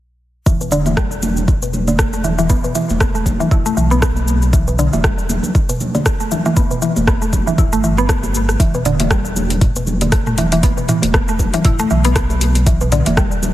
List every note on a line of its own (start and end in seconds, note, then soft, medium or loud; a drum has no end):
0.46 2.60 E1 medium
0.46 0.60 E3 medium
0.46 kick loud
0.46 shaker medium
0.61 0.71 B2 medium
0.61 shaker soft
0.71 0.80 D3 loud
0.71 muted conga medium
0.71 shaker medium
0.86 0.96 E3 medium
0.86 high conga medium
0.86 shaker soft
0.97 1.11 G3 medium
0.97 kick loud
0.97 cross-stick loud
0.97 shaker soft
1.11 shaker soft
1.22 muted conga medium
1.22 high conga medium
1.22 low conga loud
1.22 shaker medium
1.37 low conga loud
1.37 shaker medium
1.48 kick loud
1.48 shaker soft
1.62 1.73 B2 medium
1.62 muted conga soft
1.62 shaker medium
1.73 high conga medium
1.73 low conga medium
1.73 shaker medium
1.87 1.98 D3 medium
1.87 muted conga soft
1.87 high conga medium
1.87 shaker medium
1.99 kick loud
1.99 cross-stick loud
1.99 shaker medium
2.13 2.23 A3 medium
2.13 muted conga soft
2.13 shaker soft
2.24 2.32 E3 medium
2.24 low conga medium
2.24 shaker medium
2.38 2.45 E3 loud
2.38 muted conga medium
2.38 high conga medium
2.38 shaker medium
2.50 2.58 B3 medium
2.50 kick loud
2.50 shaker loud
2.64 2.74 B2 medium
2.64 shaker medium
2.75 2.88 E3 medium
2.75 muted conga soft
2.75 shaker medium
2.89 3.36 E1 medium
2.89 high conga loud
2.89 shaker medium
3.00 3.14 B3 medium
3.00 kick loud
3.00 cross-stick loud
3.00 shaker medium
3.15 3.25 A3 medium
3.15 shaker medium
3.26 kick medium
3.26 muted conga medium
3.26 high conga medium
3.26 low conga loud
3.26 shaker medium
3.40 3.46 E3 loud
3.40 low conga loud
3.40 shaker soft
3.51 3.72 E1 loud
3.51 3.65 E4 medium
3.51 kick loud
3.51 shaker medium
3.66 3.76 A3 medium
3.66 muted conga soft
3.66 shaker medium
3.77 4.88 B1 medium
3.77 3.90 E3 medium
3.77 shaker medium
3.90 4.01 B3 loud
3.90 muted conga medium
3.90 shaker medium
4.02 4.15 B3 medium
4.02 kick loud
4.02 cross-stick loud
4.02 shaker medium
4.16 muted conga soft
4.16 high conga medium
4.16 shaker medium
4.28 high conga medium
4.28 shaker loud
4.42 muted conga soft
4.42 shaker medium
4.53 4.67 E3 medium
4.53 kick loud
4.53 shaker loud
4.67 4.78 B2 medium
4.67 shaker medium
4.79 4.87 D3 loud
4.79 muted conga soft
4.79 shaker medium
4.93 5.39 E1 medium
4.93 5.03 E3 medium
4.93 high conga loud
4.93 shaker medium
5.04 5.18 G3 medium
5.04 kick loud
5.04 cross-stick loud
5.04 muted conga soft
5.04 shaker medium
5.18 shaker soft
5.29 muted conga soft
5.29 high conga loud
5.29 low conga medium
5.29 shaker medium
5.43 low conga loud
5.43 shaker medium
5.55 kick loud
5.55 shaker medium
5.69 5.79 B2 medium
5.69 muted conga soft
5.69 shaker medium
5.80 high conga medium
5.80 low conga medium
5.80 shaker medium
5.95 6.05 D3 medium
5.95 muted conga soft
5.95 high conga medium
5.95 shaker medium
6.06 kick loud
6.06 cross-stick loud
6.06 shaker loud
6.20 6.30 A3 medium
6.20 muted conga soft
6.20 shaker medium
6.31 6.39 E3 medium
6.31 low conga medium
6.31 shaker medium
6.45 6.52 E3 loud
6.45 muted conga soft
6.45 high conga medium
6.45 shaker medium
6.57 6.64 B3 medium
6.57 kick loud
6.57 shaker loud
6.71 6.81 B2 medium
6.71 shaker medium
6.82 6.95 E3 medium
6.82 muted conga medium
6.82 shaker loud
6.96 7.43 E1 medium
6.96 high conga loud
6.96 shaker medium
7.07 7.20 B3 medium
7.07 kick loud
7.07 cross-stick loud
7.07 muted conga soft
7.07 shaker medium
7.22 7.32 A3 medium
7.22 shaker medium
7.33 kick medium
7.33 muted conga soft
7.33 high conga medium
7.33 low conga loud
7.33 shaker medium
7.47 7.53 E3 loud
7.47 low conga loud
7.47 shaker medium
7.58 7.70 D1 medium
7.58 7.72 E4 medium
7.58 kick loud
7.58 shaker medium
7.72 8.56 G1 medium
7.72 7.83 A3 medium
7.72 muted conga soft
7.72 shaker medium
7.84 7.97 E3 medium
7.84 shaker medium
7.97 8.08 B3 loud
7.97 muted conga soft
7.97 shaker medium
8.09 8.22 B3 medium
8.09 kick loud
8.09 cross-stick loud
8.09 shaker medium
8.23 muted conga soft
8.23 high conga loud
8.23 shaker medium
8.35 high conga medium
8.35 shaker loud
8.49 cross-stick medium
8.49 muted conga soft
8.49 shaker medium
8.60 10.73 E1 loud
8.60 8.74 E3 medium
8.60 kick loud
8.60 closed hi-hat medium
8.60 shaker medium
8.74 8.84 B2 medium
8.74 shaker soft
8.85 8.93 D3 loud
8.85 closed hi-hat soft
8.85 mid tom medium
8.85 muted conga soft
8.85 shaker medium
9.00 9.10 E3 medium
9.00 closed hi-hat soft
9.00 high conga loud
9.00 shaker medium
9.11 9.25 G3 medium
9.11 kick loud
9.11 cross-stick loud
9.11 muted conga soft
9.11 shaker medium
9.25 shaker medium
9.36 muted conga soft
9.36 high conga medium
9.36 low conga medium
9.36 shaker medium
9.50 closed hi-hat soft
9.50 low conga loud
9.50 shaker medium
9.61 kick loud
9.61 closed hi-hat medium
9.61 mid tom medium
9.61 shaker medium
9.76 9.86 B2 medium
9.76 muted conga soft
9.76 shaker medium
9.87 high conga medium
9.87 low conga medium
9.87 shaker medium
10.01 10.12 D3 medium
10.01 closed hi-hat soft
10.01 muted conga soft
10.01 high conga medium
10.01 shaker medium
10.12 kick loud
10.12 cross-stick loud
10.12 closed hi-hat medium
10.12 shaker medium
10.26 10.37 A3 medium
10.26 mid tom medium
10.26 muted conga soft
10.26 shaker soft
10.37 10.46 E3 medium
10.37 closed hi-hat medium
10.37 low conga medium
10.37 shaker medium
10.52 10.58 E3 loud
10.52 closed hi-hat soft
10.52 muted conga soft
10.52 high conga medium
10.52 shaker medium
10.63 10.71 B3 medium
10.63 kick loud
10.63 closed hi-hat medium
10.63 shaker medium
10.78 10.88 B2 medium
10.78 shaker soft
10.88 11.02 E3 medium
10.88 closed hi-hat soft
10.88 mid tom medium
10.88 muted conga medium
10.88 shaker medium
11.02 11.49 E1 medium
11.02 closed hi-hat soft
11.02 high conga loud
11.02 shaker soft
11.14 11.27 B3 medium
11.14 kick loud
11.14 cross-stick loud
11.14 shaker medium
11.28 11.39 A3 medium
11.28 shaker soft
11.39 kick medium
11.39 muted conga medium
11.39 high conga medium
11.39 low conga medium
11.39 shaker medium
11.53 11.60 E3 loud
11.53 closed hi-hat soft
11.53 low conga medium
11.53 shaker medium
11.65 11.86 E1 medium
11.65 11.79 E4 medium
11.65 kick loud
11.65 closed hi-hat medium
11.65 mid tom medium
11.65 shaker soft
11.79 11.90 A3 loud
11.79 muted conga soft
11.79 shaker medium
11.90 13.02 B1 medium
11.90 12.03 E3 medium
11.90 shaker medium
12.05 12.15 B3 loud
12.05 closed hi-hat soft
12.05 muted conga medium
12.05 shaker soft
12.16 12.29 B3 medium
12.16 kick loud
12.16 cross-stick loud
12.16 closed hi-hat medium
12.16 shaker medium
12.30 muted conga soft
12.30 high conga medium
12.30 shaker soft
12.41 closed hi-hat medium
12.41 high conga medium
12.41 shaker medium
12.55 closed hi-hat soft
12.55 muted conga soft
12.55 shaker medium
12.67 12.80 E3 medium
12.67 kick loud
12.67 closed hi-hat medium
12.67 shaker medium
12.81 12.91 B2 medium
12.81 shaker soft
12.92 13.00 D3 loud
12.92 closed hi-hat soft
12.92 mid tom medium
12.92 muted conga medium
12.92 shaker medium
13.06 13.53 E1 medium
13.06 13.17 E3 medium
13.06 closed hi-hat soft
13.06 high conga loud
13.06 shaker medium
13.17 13.31 G3 medium
13.17 kick loud
13.17 cross-stick loud
13.17 muted conga soft
13.17 shaker soft
13.32 shaker soft
13.43 muted conga medium
13.43 high conga medium
13.43 low conga loud
13.43 shaker medium